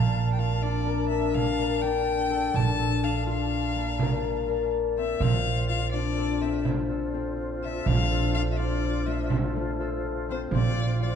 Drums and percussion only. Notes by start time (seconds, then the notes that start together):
1.34 frame drum
1.58 frame drum
2.07 frame drum
2.31 frame drum
2.54 frame drum
2.79 frame drum
3.03 frame drum
3.27 frame drum
3.52 frame drum
3.99 frame drum
5.21 frame drum
5.69 frame drum
5.93 frame drum
6.18 frame drum
6.65 frame drum
6.90 frame drum
7.37 frame drum
7.63 frame drum
7.86 frame drum
8.34 frame drum
8.58 frame drum
8.82 frame drum
9.30 frame drum
9.55 frame drum
10.04 frame drum
10.28 frame drum
10.51 frame drum